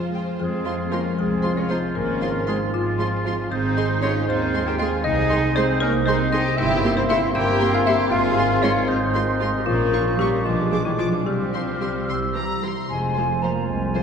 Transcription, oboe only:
0.40 F4
3.50 D#4
4.28 F4
5.04 D#4
5.80 D#4
6.58 C4
7.34 E4
8.11 F4
8.88 D#4
10.45 D4
11.25 C4
12.89 C5

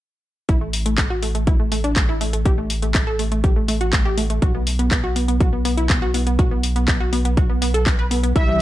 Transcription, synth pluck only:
0.49 E4
0.61 A3
0.86 A3
0.98 A3
1.10 F#4
1.23 A3
1.35 A3
1.47 E4
1.60 A3
1.72 A3
1.84 D4
1.96 A3
2.09 E4
2.21 A3
2.33 A3
2.45 G4
2.58 A3
2.82 A3
2.95 A3
3.07 A4
3.19 A3
3.32 A3
3.44 G4
3.56 A3
3.68 A3
3.81 F#4
3.93 A3
4.05 G4
4.18 A3
4.30 A3
4.42 F#4
4.55 B3
4.79 B3
4.91 B3
5.04 F#4
5.16 B3
5.28 B3
5.40 F#4
5.53 B3
5.65 B3
5.77 E4
5.90 B3
6.02 F#4
6.14 B3
6.27 B3
6.39 F#4
6.51 B3
6.76 B3
6.88 B3
7.00 F#4
7.13 B3
7.25 B3
7.37 F#4
7.50 B3
7.62 B3
7.74 A4
7.86 B3
7.99 B4
8.11 B3
8.23 B3
8.36 E4
8.48 G3

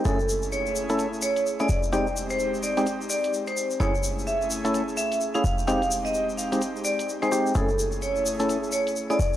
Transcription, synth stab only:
0.05 A3 C#4 E4 G#4
0.90 A3 C#4 E4 A4
1.60 A3 C#4 E4 G#4
1.92 G#3 C4 D#4 G4
2.77 G#3 C4 D#4 G4
3.80 A3 C#4 E4 G#4
4.65 A3 C#4 E4 A4
5.35 A3 C#4 E4 G#4
5.67 G#3 C4 D#4 G4
6.52 G#3 C4 D#4 G4
7.22 G#3 C4 D#4 G#4
7.32 G#3 C4 D#4 G4
7.55 A3 C#4 E4 G#4
8.40 A3 C#4 E4 A4
9.10 A3 C#4 E4 G#4

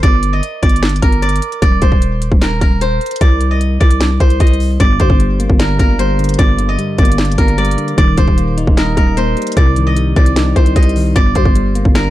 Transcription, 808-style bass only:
0.03 G1
0.63 G1
1.02 G1
1.62 D#1
1.82 D#1
2.32 D#1
2.61 D#1
3.21 C2
3.81 C2
4.20 C2
4.40 C2
4.80 G1
5.00 D2
5.10 G1
5.50 G1
5.79 G1
6.39 G1
6.99 G1
7.38 G1
7.98 D#1
8.18 D#1
8.67 D#1
8.97 D#1
9.57 C2
10.16 C2
10.56 C2
10.76 C2
11.16 G1
11.36 D2
11.45 G1
11.85 G1

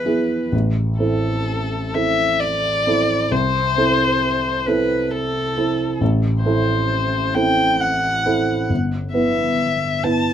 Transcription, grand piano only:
Already playing: B3 E4 G#4
0.05 B3 E4 G#4
0.52 A1
0.99 C4 E4 A4
1.94 C4 E4 A4
2.87 C4 E4 A4
3.31 C2
3.77 C4 E4 A4
4.67 C4 E4 A4
5.57 C4 E4 A4
6.01 A1
6.45 C4 E4 A4
7.35 C4 E4 A4
8.26 C4 E4 A4
8.70 G1
9.14 B3 E4 B4
10.04 B3 E4 B4

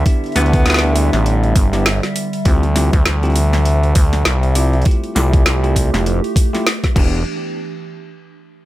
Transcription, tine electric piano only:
0.06 B3 D4 E4 G4
0.36 B3 D4 E4 G4
0.83 B3 D4 E4 G4
1.73 B3 D4 E4 G4
2.45 C4 E4 F4 G4
2.75 C4 E4 F4 G4
3.23 C4 E4 F4 G4
4.56 C4 E4 F4 G4
4.86 A3 E4 F4 G4
5.15 A3 E4 F4 G4
5.63 A3 E4 F4 G4
6.53 A3 E4 F4 G4
6.96 B3 D4 E4 G4

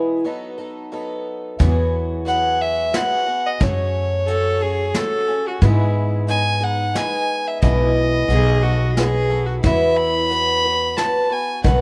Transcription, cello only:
4.28 A4
4.62 G#4
4.96 A4
5.48 F#4
5.65 E4
8.31 G#4
8.63 F#4
8.97 G#4
9.46 F#4
9.61 E4

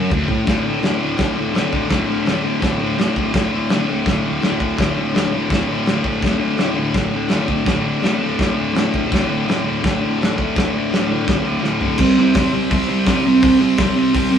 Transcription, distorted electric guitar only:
Already playing: F#2
0.13 D2
0.29 A2
0.45 D2 A2
0.49 D3
0.63 A2 D3
0.80 D2 A2
0.84 D3
0.99 D2 A2 D3
1.17 D2 A2 D3
1.35 A2 D3
1.53 D2 A2 D3
1.72 A2 D3
1.88 D2 A2 D3
2.06 A2 D3
2.24 D2 A2 D3
2.42 D2 A2 D3
2.60 D2 A2 D3
2.78 A2 D3
2.97 D2 A2 D3
3.16 A2 D3
3.32 D2 A2 D3
3.52 A2 D3
3.70 D2 A2 D3
3.87 D2 A2 D3
4.05 D2 A2
4.10 D3
4.24 A2 D3
4.41 D2 A2 D3
4.60 D3
4.64 A2
4.77 D2 A2 D3
4.95 D3
4.99 A2
5.13 D2 A2
5.17 D3
5.31 A2 D3
5.35 D2
5.51 D2 A2 D3
5.68 A2 D3
5.88 D2 A2 D3
6.03 D3
6.07 A2
6.21 D2 A2 D3
6.38 A2 D3
6.57 D2 A2 D3
6.74 A2 D3
6.78 D2
6.94 D2 A2 D3
7.12 A2 D3
7.28 D2 A2 D3
7.48 A2 D3
7.64 D2 A2
7.68 D3
7.81 D3
7.86 A2
8.01 D2 A2 D3
8.19 D2 A2 D3
8.38 D2 A2
8.42 D3
8.54 A2 D3
8.73 D2 A2
8.77 D3
8.91 A2 D3
9.07 D2 A2
9.11 D3
9.27 A2 D3
9.45 D2 A2 D3
9.62 A2 D3
9.67 D2
9.81 D2 A2 D3
9.99 D3
10.04 A2
10.18 D2 A2
10.22 D3
10.36 D3
10.41 A2
10.55 D2 A2 D3
10.73 D3
10.77 A2
10.90 D2 A2 D3
11.08 D2 A2 D3
11.25 D2 A2
11.29 D3
11.43 A2 D3
11.59 D2 A2 D3
11.79 A2 D3
11.99 C3 G3 C4
12.18 C3 G3 C4
12.36 C3 G3 C4
12.53 C3 G3 C4
12.71 C3 G3 C4
12.88 C3 G3 C4
13.07 C3 G3 C4
13.26 C3 G3 C4
13.43 C3 G3 C4
13.60 C3 G3 C4
13.79 C3 G3 C4
13.96 C3 G3 C4
14.14 C3 G3 C4
14.31 C3 G3 C4

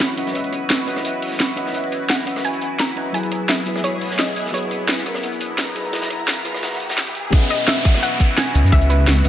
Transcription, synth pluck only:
2.10 F#5
2.45 G#5
2.80 A#5
3.14 G#5
3.49 E5
3.84 C#5
4.19 D#5
4.54 C#5
7.50 D#5
7.68 E5
8.03 F#5
8.37 G#5
8.72 E5
8.90 B4

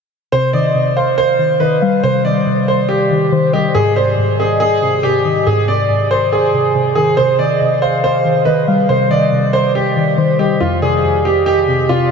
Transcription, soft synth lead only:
0.54 D#5
0.96 F5
1.61 D#5
1.82 F5
2.25 D#5
2.68 D5
3.32 C5
3.53 D#5
3.96 D5
4.39 D#5
5.03 D5
5.25 D#5
5.68 D5
6.10 C5
7.39 D#5
7.82 F5
8.46 D#5
8.68 F5
9.11 D#5
9.53 D5
10.18 C5
10.39 D#5
10.82 D5
11.25 D#5
11.89 D5

